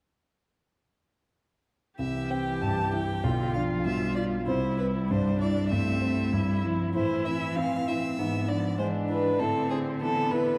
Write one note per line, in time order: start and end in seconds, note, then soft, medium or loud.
1.99 3.19 C2 soft
1.99 3.26 E3 soft
1.99 3.25 G4 soft
1.99 2.32 E5 medium
2.30 2.80 C4 soft
2.30 2.63 G5 soft
2.62 3.11 G2 soft
2.62 2.93 A5 medium
2.93 3.23 E4 soft
2.93 3.53 G5 medium
3.23 4.44 B1 soft
3.23 3.56 D3 soft
3.23 4.47 F4 soft
3.54 3.86 F3 soft
3.54 4.04 D4 soft
3.54 3.62 F5 soft
3.84 4.35 B2 soft
3.84 4.46 G3 soft
3.84 4.15 E5 soft
4.16 4.48 F4 soft
4.16 4.24 D5 soft
4.46 5.67 C2 soft
4.46 5.73 G3 soft
4.46 5.12 E4 soft
4.46 4.78 C5 medium
4.78 5.29 C4 soft
4.78 4.86 B4 soft
5.10 5.59 G2 soft
5.10 5.73 D4 soft
5.10 5.40 C5 medium
5.41 5.90 E4 soft
5.41 5.70 D5 medium
5.70 6.21 G2 soft
5.70 6.34 A3 soft
5.70 6.35 C4 soft
5.70 6.61 E5 medium
6.02 6.51 C4 soft
6.32 6.82 G2 soft
6.32 6.65 G3 soft
6.32 6.94 E4 soft
6.64 6.97 F3 soft
6.64 6.95 E4 soft
6.95 8.14 A2 soft
6.95 8.17 E3 soft
6.95 7.58 E4 soft
6.95 7.27 C5 medium
7.25 7.75 C4 soft
7.25 7.57 E5 medium
7.56 8.06 E3 soft
7.56 8.20 C4 soft
7.56 7.89 F5 medium
7.88 8.18 E4 soft
7.88 8.50 E5 medium
8.18 9.36 G#2 soft
8.18 8.47 E3 soft
8.18 8.78 B3 soft
8.49 8.80 F3 soft
8.49 8.97 D4 soft
8.49 8.78 D5 medium
8.78 9.38 E3 soft
8.78 9.27 G#3 soft
8.78 9.41 D4 soft
8.78 8.87 C5 medium
9.09 9.39 E4 soft
9.09 9.41 B4 medium
9.38 10.58 A2 soft
9.38 10.58 D3 soft
9.38 10.02 C4 soft
9.38 9.70 A4 medium
9.70 10.19 C4 soft
9.70 9.78 G#4 medium
10.01 10.49 E3 soft
10.01 10.58 B3 soft
10.01 10.32 A4 medium
10.31 10.58 E4 soft
10.31 10.58 B4 medium